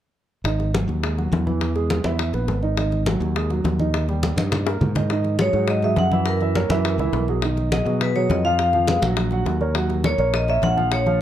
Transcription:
0.44 G#1 D#3 D#4, high bongo, high conga
0.60 high bongo, high conga
0.74 F#3 F#4, high bongo, high conga
0.88 D#2, high bongo, high conga
1.03 G#3 G#4, high bongo, high conga
1.18 F#3 F#4, high bongo, high conga
1.32 E2, high bongo, low bongo, high conga
1.46 E3 E4, high conga
1.61 high bongo, high conga
1.75 G#3 G#4, high bongo, high conga
1.90 high bongo, high conga
2.04 E2 E4 E5, high bongo, high conga
2.19 high bongo, high conga
2.33 A#1 B3 B4, high bongo, high conga
2.48 G#1, high bongo, low bongo, high conga
2.62 D#3 D#4, high conga
2.77 D#3 D#4, high bongo, high conga
2.92 high bongo, high conga
3.06 F#3 F#4, high bongo, high conga
3.20 D#2, high bongo, high conga
3.36 G#3 G#4, high bongo, high conga
3.50 F#3 F#4, high bongo, high conga
3.64 D#2, high bongo, low bongo, high conga
3.79 D#3 D#4, high conga
3.94 high bongo, high conga
4.09 G3 G4, high bongo, high conga
4.23 high bongo, high conga
4.36 G2 D#4 D#5, high bongo, high conga
4.52 high bongo, low conga
4.67 A#3 A#4, high bongo
4.81 G#2, low conga
4.95 D#3 D#4, low bongo, low conga
5.10 D#3 D#4 D#5, high bongo, high conga
5.24 high bongo, high conga
5.39 F#3 F#4 G#4 C#5, high bongo, high conga
5.53 G#2 F#3 F#4 G#4, high bongo, high conga
5.68 D#5, high bongo, high conga
5.82 F#3 F#4 G#4 E5, high bongo, high conga
5.96 F#2 F#5, high bongo, low bongo, high conga
6.12 E3 E4 E5, high conga
6.26 A#4, high bongo, high conga
6.41 E3 E4 E5, high bongo, high conga
6.55 A#3 A#4 C#5, high bongo, high conga
6.69 F#2 E3 E4 E5, high bongo, high conga
6.85 high bongo, high conga
6.98 C#2 E3 E4 E5, high bongo, high conga
7.13 B1, high bongo, low bongo, high conga
7.28 F#3 F#4 G#4, high conga
7.42 D#3 D#4 D#5, high bongo, high conga
7.57 high bongo, high conga
7.71 F#3 F#4 G#4 D#5, high bongo, high conga
7.85 B2 F#3 F#4 G#4, high bongo, high conga
8.01 B4, high bongo, high conga
8.16 F#3 F#4 G#4 C#5, high bongo, high conga
8.29 F2 D#5, high bongo, low bongo, high conga
8.45 F3 F4 F5
8.59 high bongo, high conga
8.73 F3 F4 F5, high bongo, high conga
8.87 G#3 G#4 B4, high bongo, high conga
9.02 A#1 F#3 F#4 F#5, high bongo, high conga
9.17 high bongo, high conga
9.31 F#3 F#4 F#5, high bongo, high conga
9.46 D#2, high bongo, low bongo, high conga
9.61 A#3 A#4 C#5, high conga
9.75 F#3 F#4 F#5, high bongo, high conga
9.90 high bongo, high conga
10.04 A#3 A#4 C#5, high bongo, high conga
10.18 A#1 A#3 A#4 C#5, high bongo, high conga
10.34 D#5, high bongo, high conga
10.48 A#3 A#4 C#5 E5, high bongo, high conga
10.62 A#1 F#5, high bongo, low bongo, high conga
10.77 F3 F4 F5, high conga
10.92 C#5, high bongo, high conga
11.06 F3 F4 F5, high bongo, high conga

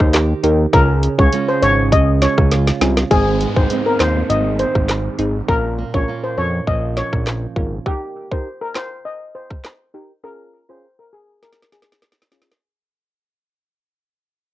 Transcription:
Already playing: D#3 A#3 D#4 G4
0.00 D#2, kick, cross-stick
0.14 G4, snare, clap, closed hi-hat
0.43 D#2 D#4 G4 A#4, closed hi-hat
0.73 C#2 C#3 C#4 F4 G#4 A#4, kick, closed hi-hat
1.03 closed hi-hat
1.18 C#2 C#4 F4 G#4 C#5, kick
1.32 G#3 C#4 F4, closed hi-hat
1.48 C5
1.62 G#1 C#5, closed hi-hat
1.92 C#2 D#5, kick, closed hi-hat
2.22 C#4 C#5, snare, closed hi-hat
2.38 C#2, kick, cross-stick
2.51 F4, snare, closed hi-hat
2.67 snare
2.81 C2 C#4 F4 G#4, snare, closed hi-hat
2.97 snare
3.11 G#1 G#2 C4 D#4 G#4, kick, closed hi-hat, downlifter
3.41 G#3, closed hi-hat
3.56 G#1 C4 D#4 G#4 C5, kick
3.70 G#3 C4 D#4, closed hi-hat
3.86 A#4
4.00 D#2 C5, snare, clap, closed hi-hat
4.30 G#1 D#3 D#5, closed hi-hat
4.59 C4 C5, closed hi-hat
4.75 G#1, kick, cross-stick
4.89 snare, clap, closed hi-hat
5.19 G#1 C4 D#4 G#4, closed hi-hat
5.48 A#1 A#2 C#4 F4 A#4, kick
5.78 A#3
5.94 A#1 C#4 F4 A#4 C#5, kick
6.08 A#3 C#4 F4
6.24 C5
6.38 F2 C#5
6.67 A#1 F3 D#5, kick
6.97 C#4 C#5, snare
7.13 A#1, kick, cross-stick
7.27 snare, clap
7.56 G#1 C#4 F4 A#4, kick
7.86 D#4 G4 A#4, kick
8.31 D#4 G4 A#4 C5, kick
8.61 A#4
8.75 C5, snare, clap
9.05 D#5
9.35 C5
9.50 kick, cross-stick
9.65 snare, clap
9.94 D#4 G4 A#4
10.24 C#4 F4 G#4 A#4
10.69 C#4 F4 G#4 C5
10.99 A#4
11.13 G#4
11.43 A#4, snare
11.53 snare
11.62 snare
11.72 G#4, snare
11.82 snare
11.92 snare
12.02 snare
12.12 snare
12.22 snare
12.31 C#4 F4 G#4, snare
12.42 snare
12.52 snare

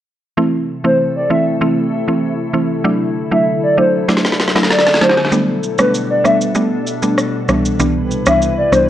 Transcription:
0.37 C3 E3 A3 C4 E4 A4
0.84 E3 A3 C4 E4 C5
1.16 D5
1.30 E3 A3 C4 E4 E5
1.61 E3 A3 C4 E4
2.08 E3 A3 C4 E4
2.54 E3 A3 C4 E4
2.85 D3 F#3 A3 D4 E4 A4
3.31 F#3 A3 D4 E4 E5
3.63 D5
3.77 F#3 A3 D4 E4 C5
4.08 F#3 A3 D4 E4, snare
4.17 snare
4.25 snare
4.32 snare
4.39 snare
4.48 snare
4.55 F#3 A3 D4 E4, snare
4.63 snare
4.70 D5, snare
4.78 snare
4.86 snare
4.94 snare
5.01 F#3 A3 D4 E4 C5, snare
5.09 snare
5.17 snare
5.25 snare
5.32 B2 G3 A3 B3 D4 A4, shaker
5.63 shaker
5.78 G3 A3 B3 D4 B4, cross-stick, shaker
5.95 shaker
6.11 D5
6.25 G3 A3 B3 D4 E5, cross-stick, shaker
6.42 shaker
6.55 G3 A3 B3 D4, shaker
6.87 shaker
7.03 G3 A3 B3 D4, shaker
7.18 cross-stick, shaker
7.48 C2 C3 E3 G3 B3 D4 E4 B4, cross-stick, shaker
7.65 shaker
7.79 C2 E3 G3 B3 D4, shaker
8.11 shaker
8.26 C2 E3 G3 B3 D4 E5, cross-stick, shaker
8.42 shaker
8.58 D5
8.72 C2 E3 G3 B3 D4 C5, cross-stick, shaker

